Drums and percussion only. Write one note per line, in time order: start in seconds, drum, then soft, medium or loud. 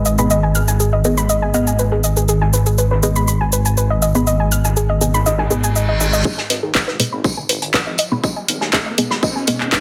0.05 tambourine medium
0.05 shaker medium
0.18 shaker medium
0.30 tambourine medium
0.30 shaker medium
0.55 tambourine medium
0.55 shaker medium
0.68 snare soft
0.68 shaker medium
0.80 tambourine medium
0.80 shaker medium
1.04 tambourine medium
1.04 shaker medium
1.18 snare medium
1.18 shaker medium
1.29 tambourine medium
1.29 shaker medium
1.54 tambourine medium
1.54 shaker medium
1.67 shaker medium
1.79 tambourine medium
1.79 shaker medium
2.04 tambourine medium
2.04 shaker medium
2.17 shaker medium
2.29 tambourine medium
2.29 shaker medium
2.42 snare soft
2.53 snare soft
2.53 tambourine medium
2.53 shaker medium
2.66 shaker medium
2.78 tambourine medium
2.78 shaker medium
2.92 snare soft
3.03 tambourine medium
3.03 shaker medium
3.16 shaker medium
3.28 tambourine medium
3.28 shaker medium
3.53 tambourine medium
3.53 shaker medium
3.65 closed hi-hat soft
3.65 shaker medium
3.77 tambourine medium
3.77 shaker medium
4.02 tambourine medium
4.02 shaker medium
4.15 shaker medium
4.27 tambourine medium
4.27 shaker medium
4.52 tambourine medium
4.52 shaker medium
4.65 snare soft
4.65 shaker medium
4.77 tambourine medium
4.77 shaker medium
5.01 tambourine medium
5.01 shaker medium
5.14 snare medium
5.14 shaker medium
5.26 snare loud
5.26 tambourine medium
5.26 shaker medium
5.38 snare loud
5.38 tambourine medium
5.50 snare loud
5.50 tambourine medium
5.50 shaker medium
5.64 shaker medium
5.75 tambourine medium
5.75 shaker medium
6.01 snare loud
6.01 shaker medium
6.13 snare soft
6.13 shaker medium
6.25 kick loud
6.25 tambourine medium
6.38 snare soft
6.50 snare soft
6.50 open hi-hat loud
6.50 tambourine medium
6.75 kick loud
6.75 snare loud
6.75 clap loud
6.75 tambourine medium
6.88 snare soft
7.00 open hi-hat loud
7.00 tambourine medium
7.24 kick loud
7.24 tambourine medium
7.49 open hi-hat loud
7.49 tambourine medium
7.62 closed hi-hat soft
7.74 kick loud
7.74 snare loud
7.74 clap loud
7.74 tambourine medium
7.98 open hi-hat loud
7.98 tambourine medium
8.24 kick loud
8.24 tambourine medium
8.48 open hi-hat loud
8.48 tambourine medium
8.61 snare soft
8.72 kick loud
8.72 snare loud
8.72 clap loud
8.72 tambourine medium
8.98 open hi-hat loud
8.98 tambourine medium
9.11 snare medium
9.23 kick loud
9.23 tambourine medium
9.47 open hi-hat loud
9.47 tambourine medium
9.61 clap soft
9.72 kick loud
9.72 snare loud
9.72 clap loud
9.72 tambourine medium